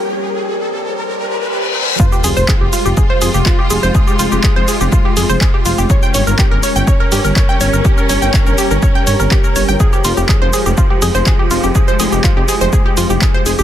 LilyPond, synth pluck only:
\new Staff \with { instrumentName = "Synth pluck" } { \time 4/4 \key f \minor \tempo 4 = 123 r1 | f'16 g'16 aes'16 c''16 aes'16 g'16 f'16 g'16 aes'16 c''16 aes'16 g'16 f'16 g'16 aes'16 c''16 | aes'16 g'16 f'16 g'16 aes'16 c''16 aes'16 g'16 f'16 g'16 aes'16 c''16 aes'16 g'16 f'16 g'16 | des''16 g''16 des''16 bes'16 g'16 bes'16 des''16 g''16 des''16 bes'16 g'16 bes'16 des''16 g''16 des''16 bes'16 |
g'16 bes'16 des''16 g''16 des''16 bes'16 g'16 bes'16 des''16 g''16 des''16 bes'16 g'16 bes'16 des''16 g''16 | aes'16 g'16 f'16 g'16 aes'16 c''16 aes'16 g'16 f'16 g'16 aes'16 c''16 aes'16 g'16 f'16 g'16 | aes'16 c''16 aes'16 g'16 f'16 g'16 aes'16 c''16 aes'16 g'16 f'16 g'16 aes'16 c''16 aes'16 g'16 | }